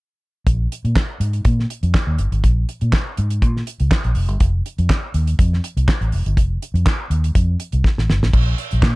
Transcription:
0.47 0.66 A#1 medium
0.47 kick loud
0.47 closed hi-hat medium
0.72 closed hi-hat medium
0.85 0.94 A#2 medium
0.85 closed hi-hat soft
0.96 kick loud
0.96 snare loud
0.96 clap medium
1.20 1.40 G#2 medium
1.20 closed hi-hat medium
1.33 closed hi-hat soft
1.45 1.65 A#2 medium
1.45 kick loud
1.45 closed hi-hat medium
1.60 snare soft
1.70 closed hi-hat medium
1.83 1.92 F2 medium
1.83 closed hi-hat soft
1.94 kick loud
1.94 snare loud
1.94 clap medium
2.07 2.16 D#2 medium
2.18 2.29 G1 medium
2.18 closed hi-hat medium
2.32 2.41 G#1 medium
2.32 closed hi-hat soft
2.44 2.63 A#1 medium
2.44 kick medium
2.44 closed hi-hat medium
2.69 closed hi-hat medium
2.81 2.91 A#2 medium
2.81 closed hi-hat soft
2.93 kick medium
2.93 snare loud
2.93 clap medium
3.17 3.43 G#2 medium
3.17 closed hi-hat medium
3.30 closed hi-hat medium
3.42 3.62 A#2 medium
3.42 kick medium
3.42 closed hi-hat medium
3.57 snare soft
3.67 closed hi-hat medium
3.80 3.89 C#2 medium
3.80 closed hi-hat soft
3.91 kick loud
3.91 snare loud
3.91 clap medium
4.04 4.14 A#1 medium
4.04 closed hi-hat soft
4.15 4.28 F1 medium
4.15 open hi-hat medium
4.28 4.38 G1 medium
4.28 closed hi-hat soft
4.40 4.60 F1 medium
4.40 kick medium
4.40 closed hi-hat medium
4.66 closed hi-hat medium
4.78 4.88 F2 medium
4.78 closed hi-hat soft
4.90 kick medium
4.90 snare loud
4.90 clap medium
5.14 5.34 D#2 medium
5.14 closed hi-hat medium
5.27 closed hi-hat soft
5.39 5.58 F2 loud
5.39 kick loud
5.39 closed hi-hat medium
5.53 snare soft
5.64 closed hi-hat medium
5.77 5.86 C2 medium
5.77 closed hi-hat soft
5.88 kick loud
5.88 snare loud
5.88 clap medium
6.01 6.10 A1 medium
6.01 closed hi-hat soft
6.12 6.23 F1 medium
6.12 open hi-hat medium
6.26 6.37 G1 medium
6.26 closed hi-hat soft
6.37 6.57 F1 loud
6.37 kick medium
6.37 closed hi-hat medium
6.62 closed hi-hat medium
6.74 6.83 F2 loud
6.74 closed hi-hat soft
6.86 kick loud
6.86 snare loud
6.86 clap loud
7.10 7.30 D#2 medium
7.10 closed hi-hat medium
7.24 closed hi-hat medium
7.35 7.55 F2 medium
7.35 kick loud
7.35 closed hi-hat medium
7.60 closed hi-hat medium
7.72 7.82 C2 medium
7.72 closed hi-hat soft
7.84 kick loud
7.84 snare medium
7.98 8.07 A1 medium
7.98 snare soft
8.10 8.20 G1 medium
8.10 snare medium
8.23 8.31 A1 medium
8.23 snare medium
8.33 8.53 A#1 medium
8.33 kick loud
8.33 crash medium
8.58 closed hi-hat medium
8.71 8.81 A#1 medium
8.71 closed hi-hat soft
8.82 8.96 A#2 medium
8.82 kick loud
8.82 snare loud
8.82 clap medium

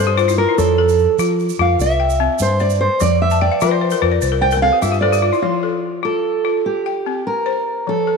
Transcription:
0.00 0.45 G2 medium
0.00 0.17 C4 medium
0.00 0.16 A4 medium
0.00 0.38 C5 medium
0.07 0.26 G4 medium
0.17 0.36 F4 medium
0.17 0.58 C5 medium
0.17 shaker soft
0.28 0.47 E4 medium
0.28 shaker medium
0.38 0.57 F4 medium
0.38 0.57 A#4 medium
0.49 0.67 E4 medium
0.58 1.06 F2 loud
0.58 0.99 F3 medium
0.58 1.15 A4 medium
0.58 shaker medium
0.78 1.39 A4 medium
0.89 shaker soft
0.98 shaker soft
1.19 1.50 F3 medium
1.19 1.58 F4 medium
1.19 shaker medium
1.40 shaker soft
1.49 shaker medium
1.59 1.75 F2 medium
1.59 1.79 F4 medium
1.59 1.81 F5 medium
1.79 2.27 C2 medium
1.79 2.43 E5 medium
1.79 shaker medium
1.90 shaker soft
2.00 2.60 G5 medium
2.10 shaker soft
2.20 2.60 C4 medium
2.39 2.87 G2 loud
2.39 2.62 C5 medium
2.39 shaker medium
2.59 3.01 C5 medium
2.59 2.81 D5 medium
2.59 shaker soft
2.70 shaker soft
2.81 3.01 C5 medium
3.00 3.48 F2 loud
3.00 3.41 F3 medium
3.00 3.20 D5 medium
3.00 shaker medium
3.22 3.40 E5 medium
3.30 3.50 A5 medium
3.30 shaker soft
3.41 3.62 D5 medium
3.41 3.60 G5 medium
3.52 3.70 F5 medium
3.61 3.93 F3 medium
3.61 4.01 F4 medium
3.61 4.05 C5 medium
3.61 3.80 E5 medium
3.61 shaker medium
3.71 3.90 D5 medium
3.81 4.00 C5 medium
3.90 4.10 A#4 medium
3.90 shaker medium
4.02 4.18 F2 medium
4.02 4.22 F4 medium
4.02 4.18 A#4 medium
4.02 4.21 C5 medium
4.12 4.30 D5 medium
4.22 4.70 C2 medium
4.22 4.41 C5 medium
4.22 shaker medium
4.32 4.51 A#4 medium
4.41 4.61 C5 medium
4.41 4.56 G5 loud
4.51 4.71 A#4 medium
4.51 shaker soft
4.57 4.62 G5 medium
4.62 5.03 C4 medium
4.62 4.81 A4 medium
4.62 4.82 F5 loud
4.72 4.91 G4 medium
4.82 5.30 G2 loud
4.82 5.01 F4 medium
4.82 5.00 E5 medium
4.82 shaker medium
4.92 5.11 G4 medium
4.92 shaker soft
5.01 5.21 A4 medium
5.01 5.43 C5 medium
5.01 5.39 D5 medium
5.13 5.32 G4 medium
5.13 shaker medium
5.22 5.41 F4 medium
5.33 5.52 E4 medium
5.33 shaker soft
5.42 5.84 F3 medium
5.42 6.05 F4 medium
5.63 6.24 A4 medium
6.03 6.43 F4 medium
6.03 6.61 A4 medium
6.45 6.65 F4 medium
6.66 7.22 G4 medium
6.86 7.47 G5 medium
7.06 7.47 C4 medium
7.27 7.89 A#4 medium
7.46 7.87 C5 medium
7.87 8.17 F3 medium
7.87 8.17 A4 medium
8.07 8.17 A4 medium

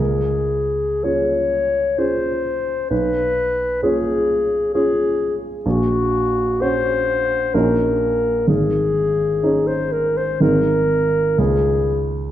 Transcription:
0.00 1.00 C#2 soft
0.00 1.05 G#4 soft
1.04 1.94 C#4 soft
1.04 1.95 F4 soft
1.04 1.95 G#4 soft
1.04 2.00 C#5 soft
1.98 2.87 C#4 soft
1.98 2.87 F4 soft
1.98 2.87 G#4 soft
1.98 2.90 C5 soft
2.90 3.80 B1 soft
2.90 3.80 B4 medium
3.82 4.70 C#4 soft
3.82 4.71 F4 soft
3.82 4.72 G#4 medium
3.82 4.71 G#4 soft
4.74 5.61 C#4 soft
4.74 5.61 F4 soft
4.74 5.36 G#4 medium
4.74 5.62 G#4 soft
5.65 6.58 A#1 soft
5.65 6.63 F#4 medium
6.61 7.50 C#4 soft
6.61 7.50 F#4 soft
6.61 7.56 C5 medium
7.54 8.45 A#1 soft
7.54 8.44 C#4 soft
7.54 8.45 D#4 soft
7.54 8.45 F#4 soft
7.54 8.48 A#4 soft
8.48 9.40 G#1 soft
8.48 9.69 G#4 medium
9.43 10.37 C#4 soft
9.43 10.37 D#4 soft
9.43 10.37 G#4 soft
9.67 9.94 C5 soft
9.92 10.18 A#4 soft
10.17 10.43 C5 soft
10.40 11.35 G#1 soft
10.40 11.34 C4 soft
10.40 11.34 D#4 soft
10.40 11.35 G#4 soft
10.40 11.41 A#4 soft
11.38 12.30 C#2 soft
11.38 12.06 G#4 soft

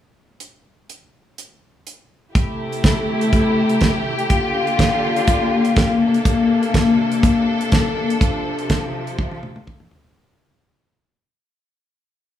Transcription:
0.40 closed hi-hat medium
0.89 closed hi-hat soft
1.38 closed hi-hat medium
1.87 closed hi-hat soft
2.34 4.28 C3 medium
2.34 4.27 A3 medium
2.34 4.27 E4 medium
2.34 5.97 G4 medium
2.34 kick loud
2.34 closed hi-hat medium
2.72 closed hi-hat soft
2.84 kick medium
2.84 snare medium
2.84 closed hi-hat medium
3.21 closed hi-hat soft
3.33 kick medium
3.33 closed hi-hat medium
3.69 closed hi-hat soft
3.80 kick medium
3.80 snare loud
3.80 closed hi-hat medium
4.19 closed hi-hat soft
4.28 5.98 D3 medium
4.28 8.17 A#3 medium
4.28 5.98 F4 medium
4.28 kick medium
4.28 closed hi-hat medium
4.67 closed hi-hat soft
4.79 kick medium
4.79 snare loud
4.79 closed hi-hat medium
5.16 closed hi-hat soft
5.27 kick loud
5.27 closed hi-hat medium
5.65 closed hi-hat soft
5.76 kick loud
5.76 snare loud
5.76 closed hi-hat medium
6.00 8.18 C3 medium
6.00 10.13 D4 medium
6.00 10.13 A4 medium
6.14 closed hi-hat soft
6.25 kick loud
6.25 closed hi-hat medium
6.63 closed hi-hat soft
6.74 kick medium
6.74 snare loud
6.74 closed hi-hat medium
7.12 closed hi-hat soft
7.23 kick loud
7.23 closed hi-hat medium
7.61 closed hi-hat soft
7.72 kick loud
7.72 snare loud
7.72 closed hi-hat medium
8.10 closed hi-hat soft
8.19 10.14 C3 medium
8.19 10.15 F3 medium
8.19 kick loud
8.19 closed hi-hat medium
8.59 closed hi-hat soft
8.70 kick loud
8.70 snare loud
8.70 closed hi-hat medium
9.07 closed hi-hat soft
9.19 kick loud
9.19 high tom medium
9.32 high tom soft
9.43 mid tom medium
9.56 mid tom medium
9.67 kick medium
9.67 mid tom medium
9.80 mid tom medium
9.91 floor tom medium
10.04 floor tom medium

